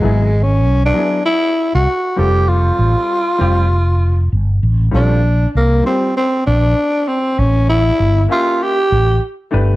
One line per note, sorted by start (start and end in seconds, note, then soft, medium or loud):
0.00 0.65 G#1 medium
0.00 0.26 F#3 medium
0.00 0.44 G#3 medium
0.00 0.26 B3 medium
0.00 0.27 E4 medium
0.05 0.27 G#4 medium
0.43 0.84 C#4 medium
0.65 0.91 B1 medium
0.85 1.23 D4 loud
0.94 1.17 F#3 medium
0.94 1.18 B3 medium
0.94 1.18 E4 medium
0.94 1.19 G#4 medium
1.26 1.71 E4 loud
1.74 1.85 C2 medium
1.74 2.20 F#4 loud
2.16 2.70 F1 medium
2.16 3.16 G3 medium
2.16 3.16 C4 medium
2.16 3.17 F4 medium
2.16 2.50 G4 loud
2.16 3.17 A4 medium
2.49 4.32 F4 medium
2.79 2.94 A1 medium
3.38 4.28 F1 medium
3.38 3.62 G3 medium
3.38 3.63 C4 medium
3.38 3.63 F4 medium
3.38 3.64 G4 medium
4.32 4.58 G1 medium
4.63 4.89 A1 medium
4.91 5.45 A#1 loud
4.91 5.15 G3 medium
4.91 5.16 C4 medium
4.91 5.51 D4 medium
4.91 5.16 F4 medium
4.91 5.17 A4 medium
5.55 5.81 C2 medium
5.55 5.84 A#3 medium
5.83 6.07 G3 medium
5.83 6.08 C4 soft
5.83 6.14 C4 medium
5.83 6.08 F4 medium
5.83 6.09 G4 medium
6.17 6.45 C4 medium
6.46 6.73 A#1 medium
6.46 7.10 D4 loud
7.08 7.40 C4 medium
7.38 7.90 A1 loud
7.38 7.69 C#4 medium
7.69 8.26 E4 medium
8.00 8.25 G1 medium
8.29 8.74 A#3 medium
8.29 8.75 C#4 medium
8.29 8.64 F4 loud
8.29 8.76 G4 medium
8.29 8.75 E5 medium
8.63 9.23 G4 loud
8.92 9.17 A1 medium
9.51 9.76 G1 medium
9.51 9.76 A3 medium
9.51 9.76 D4 medium
9.51 9.76 G4 medium
9.51 9.76 B4 medium